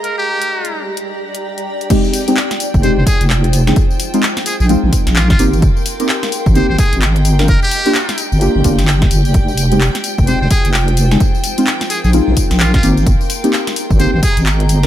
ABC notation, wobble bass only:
X:1
M:4/4
L:1/16
Q:"Swing 16ths" 1/4=129
K:Fdor
V:1 name="Wobble bass" clef=bass
z16 | z6 z F,,,2 F,,, z F,,,4- F,,, | z6 z B,,,2 B,,, z B,,,3 A,,,2- | A,,, z6 A,,,2 A,,, z A,,,3 G,,,2- |
G,,, z6 G,,,2 G,,, G,,,4 G,,, F,,,- | F,,,4- F,,, z2 F,,,2 F,,, z F,,,4- F,,, | z6 z B,,,2 B,,, z B,,,3 A,,,2- | A,,, z6 A,,,2 A,,, z A,,,3 G,,,2 |]